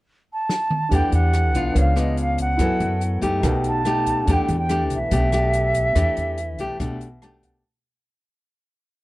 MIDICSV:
0, 0, Header, 1, 6, 480
1, 0, Start_track
1, 0, Key_signature, 1, "minor"
1, 0, Tempo, 420757
1, 1042, Time_signature, 4, 2, 24, 8
1, 10301, End_track
2, 0, Start_track
2, 0, Title_t, "Flute"
2, 0, Program_c, 0, 73
2, 379, Note_on_c, 0, 81, 95
2, 1088, Note_on_c, 0, 79, 91
2, 1106, Note_off_c, 0, 81, 0
2, 1313, Note_on_c, 0, 78, 98
2, 1331, Note_off_c, 0, 79, 0
2, 2035, Note_on_c, 0, 77, 84
2, 2052, Note_off_c, 0, 78, 0
2, 2274, Note_on_c, 0, 75, 71
2, 2291, Note_off_c, 0, 77, 0
2, 2497, Note_off_c, 0, 75, 0
2, 2517, Note_on_c, 0, 77, 81
2, 2723, Note_off_c, 0, 77, 0
2, 2756, Note_on_c, 0, 78, 83
2, 3651, Note_off_c, 0, 78, 0
2, 4207, Note_on_c, 0, 81, 100
2, 4924, Note_on_c, 0, 79, 97
2, 4941, Note_off_c, 0, 81, 0
2, 5141, Note_off_c, 0, 79, 0
2, 5231, Note_on_c, 0, 79, 97
2, 5513, Note_off_c, 0, 79, 0
2, 5645, Note_on_c, 0, 76, 96
2, 8218, Note_off_c, 0, 76, 0
2, 10301, End_track
3, 0, Start_track
3, 0, Title_t, "Grand piano"
3, 0, Program_c, 1, 0
3, 1012, Note_on_c, 1, 62, 43
3, 1035, Note_on_c, 1, 67, 38
3, 1058, Note_on_c, 1, 69, 40
3, 1082, Note_on_c, 1, 78, 47
3, 1232, Control_c, 1, 64, 127
3, 1953, Note_off_c, 1, 62, 0
3, 1970, Note_on_c, 1, 62, 44
3, 1978, Note_off_c, 1, 67, 0
3, 1989, Note_off_c, 1, 69, 0
3, 1992, Note_on_c, 1, 71, 41
3, 2002, Note_off_c, 1, 78, 0
3, 2015, Note_on_c, 1, 73, 43
3, 2018, Control_c, 1, 64, 0
3, 2038, Note_on_c, 1, 77, 49
3, 2217, Control_c, 1, 64, 127
3, 2925, Note_off_c, 1, 62, 0
3, 2934, Note_on_c, 1, 64, 48
3, 2936, Note_off_c, 1, 71, 0
3, 2947, Note_off_c, 1, 73, 0
3, 2959, Note_off_c, 1, 77, 0
3, 2960, Note_on_c, 1, 69, 43
3, 2972, Control_c, 1, 64, 0
3, 2980, Note_on_c, 1, 71, 41
3, 3004, Note_on_c, 1, 80, 51
3, 3170, Control_c, 1, 64, 127
3, 3886, Note_off_c, 1, 64, 0
3, 3889, Note_on_c, 1, 63, 57
3, 3894, Note_off_c, 1, 69, 0
3, 3909, Note_off_c, 1, 71, 0
3, 3911, Note_on_c, 1, 69, 51
3, 3922, Note_off_c, 1, 80, 0
3, 3931, Note_on_c, 1, 71, 50
3, 3932, Control_c, 1, 64, 0
3, 3956, Note_on_c, 1, 79, 63
3, 4135, Control_c, 1, 64, 127
3, 4843, Note_off_c, 1, 63, 0
3, 4851, Note_on_c, 1, 62, 44
3, 4854, Note_off_c, 1, 69, 0
3, 4864, Note_off_c, 1, 71, 0
3, 4872, Note_on_c, 1, 67, 41
3, 4877, Note_off_c, 1, 79, 0
3, 4892, Control_c, 1, 64, 0
3, 4894, Note_on_c, 1, 69, 40
3, 4918, Note_on_c, 1, 78, 54
3, 5093, Control_c, 1, 64, 127
3, 8239, Note_on_c, 1, 81, 53
3, 8460, Note_off_c, 1, 78, 0
3, 8463, Note_off_c, 1, 81, 0
3, 8478, Note_on_c, 1, 78, 45
3, 8662, Note_off_c, 1, 62, 0
3, 8672, Note_off_c, 1, 67, 0
3, 8684, Note_off_c, 1, 69, 0
3, 8702, Note_off_c, 1, 78, 0
3, 8737, Control_c, 1, 64, 0
3, 10301, End_track
4, 0, Start_track
4, 0, Title_t, "Nylon-string guitar"
4, 0, Program_c, 2, 24
4, 1046, Note_on_c, 2, 52, 54
4, 1051, Note_on_c, 2, 57, 53
4, 1055, Note_on_c, 2, 62, 54
4, 1055, Note_on_c, 2, 67, 55
4, 1726, Note_off_c, 2, 57, 0
4, 1727, Note_off_c, 2, 62, 0
4, 1729, Note_off_c, 2, 67, 0
4, 1768, Note_on_c, 2, 59, 61
4, 1775, Note_on_c, 2, 62, 55
4, 1780, Note_on_c, 2, 65, 55
4, 1980, Note_off_c, 2, 52, 0
4, 2003, Note_on_c, 2, 49, 52
4, 2206, Note_off_c, 2, 59, 0
4, 2208, Note_off_c, 2, 62, 0
4, 2209, Note_off_c, 2, 65, 0
4, 2232, Note_on_c, 2, 59, 48
4, 2237, Note_on_c, 2, 62, 51
4, 2245, Note_on_c, 2, 65, 49
4, 2918, Note_off_c, 2, 59, 0
4, 2919, Note_off_c, 2, 62, 0
4, 2920, Note_off_c, 2, 65, 0
4, 2937, Note_off_c, 2, 49, 0
4, 2960, Note_on_c, 2, 59, 50
4, 2962, Note_on_c, 2, 54, 51
4, 2966, Note_on_c, 2, 64, 56
4, 2974, Note_on_c, 2, 69, 56
4, 3436, Note_off_c, 2, 59, 0
4, 3439, Note_off_c, 2, 64, 0
4, 3441, Note_off_c, 2, 69, 0
4, 3668, Note_on_c, 2, 57, 62
4, 3675, Note_on_c, 2, 63, 60
4, 3681, Note_on_c, 2, 67, 63
4, 3895, Note_off_c, 2, 54, 0
4, 3915, Note_on_c, 2, 47, 54
4, 4355, Note_off_c, 2, 57, 0
4, 4356, Note_off_c, 2, 63, 0
4, 4360, Note_off_c, 2, 67, 0
4, 4402, Note_on_c, 2, 57, 50
4, 4407, Note_on_c, 2, 63, 49
4, 4412, Note_on_c, 2, 67, 61
4, 4841, Note_off_c, 2, 57, 0
4, 4843, Note_off_c, 2, 63, 0
4, 4846, Note_off_c, 2, 67, 0
4, 4851, Note_off_c, 2, 47, 0
4, 4880, Note_on_c, 2, 52, 51
4, 4888, Note_on_c, 2, 57, 54
4, 4894, Note_on_c, 2, 62, 51
4, 4900, Note_on_c, 2, 67, 63
4, 5190, Note_off_c, 2, 57, 0
4, 5191, Note_off_c, 2, 62, 0
4, 5192, Note_off_c, 2, 67, 0
4, 5356, Note_on_c, 2, 57, 51
4, 5361, Note_on_c, 2, 62, 46
4, 5369, Note_on_c, 2, 67, 60
4, 5666, Note_off_c, 2, 57, 0
4, 5667, Note_off_c, 2, 62, 0
4, 5672, Note_off_c, 2, 67, 0
4, 5817, Note_off_c, 2, 52, 0
4, 5836, Note_on_c, 2, 47, 52
4, 5837, Note_on_c, 2, 57, 51
4, 5843, Note_on_c, 2, 62, 58
4, 5851, Note_on_c, 2, 67, 63
4, 6037, Note_off_c, 2, 57, 0
4, 6042, Note_off_c, 2, 62, 0
4, 6046, Note_off_c, 2, 67, 0
4, 6075, Note_on_c, 2, 57, 54
4, 6083, Note_on_c, 2, 62, 52
4, 6088, Note_on_c, 2, 67, 56
4, 6758, Note_off_c, 2, 57, 0
4, 6762, Note_off_c, 2, 62, 0
4, 6765, Note_off_c, 2, 67, 0
4, 6773, Note_off_c, 2, 47, 0
4, 6792, Note_on_c, 2, 52, 54
4, 6797, Note_on_c, 2, 57, 55
4, 6799, Note_on_c, 2, 62, 47
4, 6807, Note_on_c, 2, 67, 60
4, 7273, Note_off_c, 2, 57, 0
4, 7276, Note_off_c, 2, 62, 0
4, 7278, Note_off_c, 2, 67, 0
4, 7524, Note_on_c, 2, 57, 57
4, 7527, Note_on_c, 2, 62, 60
4, 7534, Note_on_c, 2, 67, 68
4, 7724, Note_off_c, 2, 57, 0
4, 7724, Note_off_c, 2, 62, 0
4, 7726, Note_off_c, 2, 67, 0
4, 7733, Note_off_c, 2, 52, 0
4, 7752, Note_on_c, 2, 47, 57
4, 7754, Note_on_c, 2, 57, 58
4, 7756, Note_on_c, 2, 62, 55
4, 7765, Note_on_c, 2, 67, 55
4, 8065, Note_off_c, 2, 57, 0
4, 8068, Note_off_c, 2, 62, 0
4, 8070, Note_off_c, 2, 67, 0
4, 8247, Note_on_c, 2, 57, 56
4, 8252, Note_on_c, 2, 62, 52
4, 8258, Note_on_c, 2, 67, 56
4, 8694, Note_off_c, 2, 47, 0
4, 8705, Note_off_c, 2, 57, 0
4, 8708, Note_off_c, 2, 62, 0
4, 8709, Note_off_c, 2, 67, 0
4, 10301, End_track
5, 0, Start_track
5, 0, Title_t, "Upright bass"
5, 0, Program_c, 3, 32
5, 1043, Note_on_c, 3, 40, 78
5, 1154, Note_off_c, 3, 40, 0
5, 1280, Note_on_c, 3, 40, 79
5, 1761, Note_off_c, 3, 40, 0
5, 1761, Note_on_c, 3, 35, 76
5, 1984, Note_off_c, 3, 35, 0
5, 2002, Note_on_c, 3, 37, 81
5, 2914, Note_off_c, 3, 37, 0
5, 2956, Note_on_c, 3, 42, 80
5, 3069, Note_off_c, 3, 42, 0
5, 3198, Note_on_c, 3, 42, 84
5, 3644, Note_off_c, 3, 42, 0
5, 3676, Note_on_c, 3, 42, 73
5, 3900, Note_off_c, 3, 42, 0
5, 3918, Note_on_c, 3, 35, 84
5, 4831, Note_off_c, 3, 35, 0
5, 4874, Note_on_c, 3, 40, 86
5, 4987, Note_off_c, 3, 40, 0
5, 5118, Note_on_c, 3, 40, 84
5, 5594, Note_off_c, 3, 40, 0
5, 5594, Note_on_c, 3, 35, 79
5, 5819, Note_off_c, 3, 35, 0
5, 5837, Note_on_c, 3, 35, 87
5, 6752, Note_off_c, 3, 35, 0
5, 6792, Note_on_c, 3, 40, 85
5, 6906, Note_off_c, 3, 40, 0
5, 7039, Note_on_c, 3, 40, 81
5, 7514, Note_off_c, 3, 40, 0
5, 7514, Note_on_c, 3, 35, 69
5, 7739, Note_off_c, 3, 35, 0
5, 7757, Note_on_c, 3, 35, 85
5, 8674, Note_off_c, 3, 35, 0
5, 10301, End_track
6, 0, Start_track
6, 0, Title_t, "Drums"
6, 563, Note_on_c, 9, 38, 43
6, 678, Note_off_c, 9, 38, 0
6, 803, Note_on_c, 9, 47, 57
6, 917, Note_off_c, 9, 47, 0
6, 1041, Note_on_c, 9, 36, 52
6, 1044, Note_on_c, 9, 42, 49
6, 1156, Note_off_c, 9, 36, 0
6, 1158, Note_off_c, 9, 42, 0
6, 1281, Note_on_c, 9, 42, 45
6, 1395, Note_off_c, 9, 42, 0
6, 1521, Note_on_c, 9, 37, 56
6, 1521, Note_on_c, 9, 42, 42
6, 1635, Note_off_c, 9, 37, 0
6, 1635, Note_off_c, 9, 42, 0
6, 1762, Note_on_c, 9, 36, 24
6, 1764, Note_on_c, 9, 42, 42
6, 1876, Note_off_c, 9, 36, 0
6, 1878, Note_off_c, 9, 42, 0
6, 2002, Note_on_c, 9, 36, 57
6, 2005, Note_on_c, 9, 42, 59
6, 2116, Note_off_c, 9, 36, 0
6, 2119, Note_off_c, 9, 42, 0
6, 2242, Note_on_c, 9, 37, 56
6, 2242, Note_on_c, 9, 42, 42
6, 2357, Note_off_c, 9, 37, 0
6, 2357, Note_off_c, 9, 42, 0
6, 2478, Note_on_c, 9, 42, 42
6, 2592, Note_off_c, 9, 42, 0
6, 2716, Note_on_c, 9, 42, 45
6, 2718, Note_on_c, 9, 36, 23
6, 2831, Note_off_c, 9, 42, 0
6, 2832, Note_off_c, 9, 36, 0
6, 2953, Note_on_c, 9, 37, 50
6, 2953, Note_on_c, 9, 42, 52
6, 2957, Note_on_c, 9, 36, 52
6, 3067, Note_off_c, 9, 37, 0
6, 3067, Note_off_c, 9, 42, 0
6, 3071, Note_off_c, 9, 36, 0
6, 3197, Note_on_c, 9, 42, 42
6, 3311, Note_off_c, 9, 42, 0
6, 3436, Note_on_c, 9, 42, 43
6, 3550, Note_off_c, 9, 42, 0
6, 3675, Note_on_c, 9, 42, 37
6, 3676, Note_on_c, 9, 36, 23
6, 3789, Note_off_c, 9, 42, 0
6, 3790, Note_off_c, 9, 36, 0
6, 3915, Note_on_c, 9, 37, 58
6, 3915, Note_on_c, 9, 42, 53
6, 3916, Note_on_c, 9, 36, 58
6, 4029, Note_off_c, 9, 37, 0
6, 4029, Note_off_c, 9, 42, 0
6, 4031, Note_off_c, 9, 36, 0
6, 4153, Note_on_c, 9, 42, 40
6, 4267, Note_off_c, 9, 42, 0
6, 4393, Note_on_c, 9, 37, 56
6, 4393, Note_on_c, 9, 42, 37
6, 4508, Note_off_c, 9, 37, 0
6, 4508, Note_off_c, 9, 42, 0
6, 4637, Note_on_c, 9, 36, 24
6, 4637, Note_on_c, 9, 42, 44
6, 4751, Note_off_c, 9, 36, 0
6, 4751, Note_off_c, 9, 42, 0
6, 4876, Note_on_c, 9, 36, 49
6, 4876, Note_on_c, 9, 42, 51
6, 4990, Note_off_c, 9, 36, 0
6, 4990, Note_off_c, 9, 42, 0
6, 5116, Note_on_c, 9, 42, 41
6, 5230, Note_off_c, 9, 42, 0
6, 5353, Note_on_c, 9, 37, 56
6, 5353, Note_on_c, 9, 42, 41
6, 5467, Note_off_c, 9, 37, 0
6, 5467, Note_off_c, 9, 42, 0
6, 5592, Note_on_c, 9, 42, 42
6, 5595, Note_on_c, 9, 36, 22
6, 5706, Note_off_c, 9, 42, 0
6, 5709, Note_off_c, 9, 36, 0
6, 5832, Note_on_c, 9, 42, 59
6, 5835, Note_on_c, 9, 36, 56
6, 5946, Note_off_c, 9, 42, 0
6, 5949, Note_off_c, 9, 36, 0
6, 6072, Note_on_c, 9, 37, 59
6, 6072, Note_on_c, 9, 42, 41
6, 6187, Note_off_c, 9, 37, 0
6, 6187, Note_off_c, 9, 42, 0
6, 6312, Note_on_c, 9, 42, 43
6, 6426, Note_off_c, 9, 42, 0
6, 6553, Note_on_c, 9, 42, 49
6, 6554, Note_on_c, 9, 36, 23
6, 6667, Note_off_c, 9, 42, 0
6, 6668, Note_off_c, 9, 36, 0
6, 6793, Note_on_c, 9, 37, 55
6, 6793, Note_on_c, 9, 42, 52
6, 6794, Note_on_c, 9, 36, 49
6, 6907, Note_off_c, 9, 37, 0
6, 6907, Note_off_c, 9, 42, 0
6, 6908, Note_off_c, 9, 36, 0
6, 7035, Note_on_c, 9, 42, 44
6, 7149, Note_off_c, 9, 42, 0
6, 7274, Note_on_c, 9, 42, 44
6, 7388, Note_off_c, 9, 42, 0
6, 7512, Note_on_c, 9, 42, 38
6, 7514, Note_on_c, 9, 36, 21
6, 7626, Note_off_c, 9, 42, 0
6, 7628, Note_off_c, 9, 36, 0
6, 7755, Note_on_c, 9, 36, 62
6, 7757, Note_on_c, 9, 37, 56
6, 7757, Note_on_c, 9, 42, 55
6, 7869, Note_off_c, 9, 36, 0
6, 7871, Note_off_c, 9, 37, 0
6, 7871, Note_off_c, 9, 42, 0
6, 7995, Note_on_c, 9, 42, 41
6, 8109, Note_off_c, 9, 42, 0
6, 8236, Note_on_c, 9, 37, 55
6, 8236, Note_on_c, 9, 42, 40
6, 8350, Note_off_c, 9, 37, 0
6, 8350, Note_off_c, 9, 42, 0
6, 8476, Note_on_c, 9, 42, 42
6, 8477, Note_on_c, 9, 36, 23
6, 8590, Note_off_c, 9, 42, 0
6, 8591, Note_off_c, 9, 36, 0
6, 10301, End_track
0, 0, End_of_file